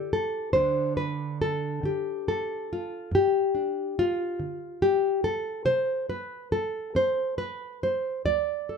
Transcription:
Already playing: D3 G4 A4 D5
0.13 A4
0.53 D2 D3 D4 C5
0.97 B4
1.42 A4
1.83 D3 G4
2.28 A4
2.73 F4
3.11 G2 G4
3.55 D4
3.99 F4
4.40 D3
4.82 G4
5.24 A4
5.65 C3 C5
6.10 B4
6.52 A4
6.95 C4 C5
7.38 B4
7.83 C5
8.25 D2 D5
8.69 A4

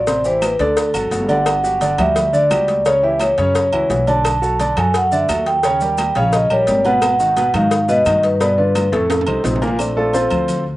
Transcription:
Already playing: A1 D5
0.07 C3 C4 C5, cowbell, high conga, low agogo, maracas
0.25 E3 E4 G4 C5, high conga, maracas
0.42 B4, cowbell, high conga, low agogo, claves, maracas
0.59 D2 D3 D4 A4 D5, cowbell, high conga, maracas
0.77 cowbell, high conga, low agogo, maracas
0.94 G#1 F#3 F#4 A4, high conga, low agogo, claves, maracas
1.11 G1 F#3 F#4 A4, cowbell, high conga, maracas
1.28 D3 D4 D5 F#5, high conga, low agogo, maracas
1.46 cowbell, high conga, low agogo, claves, maracas
1.63 F#3 F#4 G4, high conga, maracas
1.80 D3 D4 D5, cowbell, high conga, low agogo, maracas
1.98 D2 G3 F#4 G4 E5, cowbell, high conga, low conga, low agogo, claves, maracas
2.16 cowbell, high conga, low conga, low agogo, maracas
2.33 D3 D4 D5, high conga, maracas
2.50 C#2 G3 F#4 G4, cowbell, high conga, low timbale, low agogo, claves, maracas
2.68 cowbell, high conga, maracas
2.85 C#3 C#4 C#5, cowbell, high conga, low agogo, maracas
3.03 E3 E4 G4 E5, high conga
3.19 C#5, cowbell, high conga, low agogo, claves, maracas
3.38 F#2 C#3 C#4 C#5, cowbell, high conga, maracas
3.55 cowbell, high conga, low agogo, maracas
3.72 C#2 E3 E4 F#4, high conga, low agogo, claves
3.90 B1 E3 E4 F#4, cowbell, high conga, low timbale, maracas
4.07 D3 D4 D5 A5, high conga, low agogo, maracas
4.25 cowbell, low agogo, claves, maracas
4.42 F#3 F#4 A4, high conga, maracas
4.60 D3 D4 D5, cowbell, high conga, low agogo, maracas
4.77 F#2 F#3 F#4 A4 G#5, cowbell, high conga, low conga, low agogo, claves, maracas
4.94 F#5, cowbell, low agogo, maracas
5.12 D3 D4 D5 E5, high conga, maracas
5.29 D#2 F#3 F#4 A4, cowbell, high conga, low agogo, claves, maracas
5.46 G5, cowbell, maracas
5.63 C#3 C#4 C#5, cowbell, high conga, low agogo, maracas
5.81 G3 G4 A#4, high conga, maracas
5.98 cowbell, high conga, low agogo, claves, maracas
6.15 A#1 C#3 C#4 C#5 F5, cowbell, high conga, maracas
6.33 D#5, cowbell, high conga, low agogo, maracas
6.50 A#1 G3 G4 A#4 C#5, high conga, low agogo, claves
6.67 G#1 G3 G4 A#4, cowbell, high conga, maracas
6.85 B2 B3 B4 F#5, high conga, low agogo, maracas
7.02 cowbell, high conga, low agogo, claves, maracas
7.19 D#3 D#4 F#4, high conga, maracas
7.37 B2 B3 B4, cowbell, high conga, low agogo, maracas
7.54 G#2 D#3 D#4 F#4 F5, cowbell, high conga, low conga, low agogo, claves, maracas
7.71 cowbell, high conga, low agogo, maracas
7.88 B2 B3 B4 D#5, maracas
8.06 G2 D#3 D#4 F#4, cowbell, high conga, low agogo, claves, maracas
8.23 B4, cowbell, maracas
8.40 B2 B3 B4 D5, cowbell, low agogo, maracas
8.58 D3 D4 F4 B4
8.75 cowbell, high conga, low agogo, claves, maracas
8.92 F2 A2 A3 A4, cowbell, maracas
9.10 cowbell, high conga, high timbale, low agogo, maracas
9.21 high timbale
9.27 C2 C3 C4 D#4, high conga, low agogo, claves
9.44 A#1 C3 C4 D#4, cowbell, high conga, low timbale, maracas
9.56 low timbale
9.62 A#2 A#3 A#4, high conga, low agogo, maracas
9.67 low timbale
9.79 A3 C4 D4, high conga, low agogo, claves, maracas
9.97 A3 D4 F4 A4, high conga
10.13 C4 F4 A4 C5, high conga, low agogo, maracas
10.30 D2, high conga, low conga, low agogo, claves, maracas
10.48 high conga, low conga, low agogo, maracas
10.66 high conga

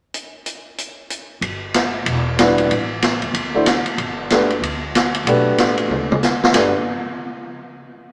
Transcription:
0.14 closed hi-hat
0.46 closed hi-hat
0.78 closed hi-hat
1.10 closed hi-hat
1.41 G1, ride
1.74 snare, hi-hat pedal, ride
2.06 E1, ride
2.39 G3 D4 E4 F#4 B4, snare, hi-hat pedal, ride
2.58 ride
2.70 A1, ride
3.02 snare, hi-hat pedal, ride
3.22 D#2, ride
3.34 D2, ride
3.54 A3 D4 E4 F#4 C5
3.66 snare, hi-hat pedal, ride
3.85 muted upright bass stroke, ride
3.98 G1, ride
4.30 A3 D4 F#4 G4 B4, snare, hi-hat pedal, ride
4.50 ride
4.61 D2, ride
4.95 snare, hi-hat pedal, ride
5.15 ride
5.25 B1 A3 D4 F#4 G4 B4, ride
5.57 A1, snare, hi-hat pedal, ride
5.78 ride
5.89 D2, mid tom
6.12 mid tom
6.23 snare, hi-hat pedal
6.43 snare
6.52 G1 A3 D4 F#4 G4 B4, snare, ride bell

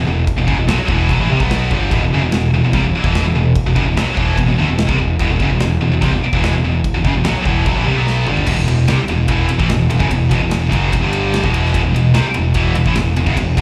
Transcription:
0.06 E1 E2 B2
0.27 kick, crash
0.37 E1 E2 B2
0.47 F#1 F#2 C#3, kick
0.57 E1 E2 B2
0.67 B1 B2 F#3, snare, crash
0.78 muted picked electric bass stroke, muted distorted electric guitar stroke
0.88 E1 E2 B2 E3, kick
1.09 B1 B2 F#3, kick, crash
1.19 A1 A2 E3
1.30 C2 C3 G3
1.40 B1 B2 F#3 B3, kick
1.51 snare, crash
1.71 G1 G2 D3 G3, kick
1.91 E1 E2 B2, kick, crash
2.01 E1 E2 B2
2.11 F#1 F#2 C#3
2.22 E1 E2 B2
2.32 E1 E2 B2, snare, crash
2.52 E1 E2 B2
2.63 E1 E2 B2
2.73 C2 C3 G3, kick, crash
2.83 E1 E2 B2
2.93 muted picked electric bass stroke, muted distorted electric guitar stroke
3.04 E1 E2 B2 E3, kick
3.15 snare, crash
3.25 E1 E2 B2
3.35 E1 E2 B2
3.56 kick, crash
3.66 E1 E2 B2
3.76 F#1 F#2 C#3, kick
3.85 E1 E2 B2
3.96 B1 B2 F#3, snare, crash
4.07 muted picked electric bass stroke, muted distorted electric guitar stroke
4.17 E1 E2 B2 E3, kick
4.37 E1 E2 B2, kick, crash
4.48 E1 E2 B2
4.57 D2 D3 A3
4.69 E1 E2 B2
4.78 snare, crash
4.89 C2 C3 G3, kick
4.98 E1 E2 B2
5.19 E1 E2 B2, kick, crash
5.29 E1 E2 B2
5.40 F#1 F#2 C#3, kick
5.50 E1 E2 B2
5.60 E1 E2 B2, snare, crash
5.80 E1 E2 B2
5.91 E1 E2 B2
6.02 C2 C3 G3, kick, crash
6.12 E1 E2 B2
6.22 muted picked electric bass stroke, muted distorted electric guitar stroke
6.33 E1 E2 B2 E3, kick
6.44 snare, crash
6.53 E1 E2 B2
6.63 E1 E2 B2
6.84 kick, crash
6.94 E1 E2 B2
7.05 F#1 F#2 C#3, kick
7.15 E1 E2 B2
7.25 B1 B2 F#3, snare, crash
7.36 muted picked electric bass stroke, muted distorted electric guitar stroke
7.45 E1 E2 B2 E3, kick
7.66 B1 B2 F#3, kick, crash
7.76 A1 A2 E3
7.85 C2 C3 G3
7.95 B1 B2 F#3 B3
8.07 snare
8.27 G1 G2 D3 G3, mid tom
8.37 floor tom
8.46 E1 E2 B2, kick, crash
8.57 E1 E2 B2
8.68 E1 E2 B2, ride
8.88 C2 C3 G3, snare, ride
8.98 muted distorted electric guitar stroke, muted picked electric bass stroke
9.08 E1 E2 B2, ride
9.28 E1 E2 B2 E3, kick, ride
9.49 E1 E2 B2, ride
9.59 A1 A2 E3, kick
9.69 E1 E2 B2, snare, ride
9.90 E1 E2 B2, ride
9.99 F#1 F#2 C#3, kick
10.10 E1 E2 B2, kick, ride
10.29 E1 E2 B2, kick, ride
10.39 E1 E2 B2
10.49 E1 E2 B2, snare, ride
10.69 F#1 F#2 C#3 F#3, kick, ride
10.73 F#2 C#3 F#3
10.91 E1 E2 B2, kick, ride
11.01 G1 G2 D3 G3
11.13 ride
11.34 snare, ride
11.42 E1 E2 B2 E3, kick
11.54 ride
11.65 snare
11.71 E1 E2 B2, kick, ride
11.82 E1 E2 B2
11.92 E1 E2 B2
11.96 ride
12.14 C2 C3 G3, snare, ride
12.25 muted distorted electric guitar stroke, muted picked electric bass stroke
12.34 E1 E2 B2, ride
12.54 E1 E2 B2 E3, kick, ride
12.75 E1 E2 B2, ride
12.86 A1 A2 E3, kick
12.95 E1 E2 B2, snare, ride
13.16 E1 E2 B2, ride
13.26 F#1 F#2 C#3, kick
13.36 E1 E2 B2, kick, ride
13.57 E1 E2 B2, kick, ride

